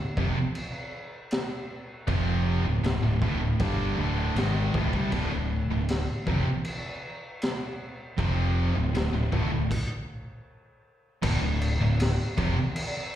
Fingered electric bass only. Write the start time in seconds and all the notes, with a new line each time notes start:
0.17 F1
0.36 muted fingered electric bass stroke
2.08 F1
2.64 D1
2.84 D1
3.03 D1
3.22 D1
3.41 D1
3.60 G1
3.97 D1
4.36 G#1
4.74 D1
4.94 C2
5.12 D1
5.30 D1
5.69 D1
6.27 F1
6.44 muted fingered electric bass stroke
8.18 F1
8.74 D1
8.94 D1
9.13 D1
9.33 D1
9.51 D1
11.23 D1
11.41 D1
11.82 D1
12.38 F1
12.57 muted fingered electric bass stroke